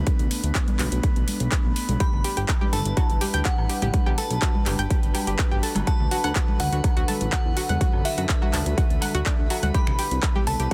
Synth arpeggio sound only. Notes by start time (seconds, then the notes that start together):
2.00 G4
2.24 G4
2.37 G4
2.61 G4
2.73 A4
2.97 F#4
3.21 G4
3.34 G5
3.45 G4
3.70 G4
3.82 G4
4.06 G4
4.18 A4
4.42 F#4
4.66 G4
4.79 G5
4.90 G4
5.15 G4
5.27 G4
5.51 G4
5.63 A4
5.87 F#4
6.11 F#4
6.24 F#5
6.36 F#4
6.60 F#4
6.73 F#4
6.97 F#4
7.08 A4
7.32 F#4
7.57 F#4
7.69 F#5
7.81 F#4
8.05 F#4
8.18 F#4
8.42 F#4
8.54 A4
8.78 F#4
9.02 F#5
9.15 F#4
9.26 D4
9.50 F#4
9.63 F#5
9.75 G4
9.99 G4
10.36 G4
10.47 A4
10.60 G4